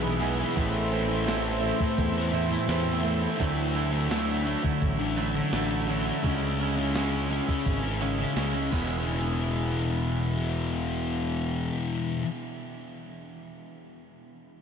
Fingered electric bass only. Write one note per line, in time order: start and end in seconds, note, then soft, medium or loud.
0.00 0.43 B1 loud
0.57 1.72 A1 medium
1.99 2.56 E2 medium
2.68 3.26 E2 medium
3.40 4.55 D2 medium
4.83 5.40 A1 medium
5.53 6.10 A1 medium
6.24 7.39 C#2 medium
7.67 8.24 G#1 medium
8.36 8.69 C#2 medium
8.72 11.70 E1 medium